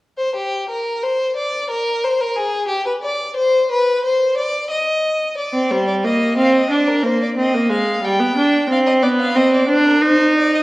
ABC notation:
X:1
M:4/4
L:1/16
Q:1/4=90
K:Cm
V:1 name="Violin"
z c G2 B2 c2 d2 B2 c B A2 | G =B d2 c2 B2 c2 d2 e4 | d2 c d e2 f e d B c d e2 f2 | g4 f e d f e d c B c2 d e |]
V:2 name="Viola"
z16 | z16 | z C G,2 B,2 C2 D2 B,2 C B, A,2 | G, =B, D2 C2 B,2 C2 D2 E4 |]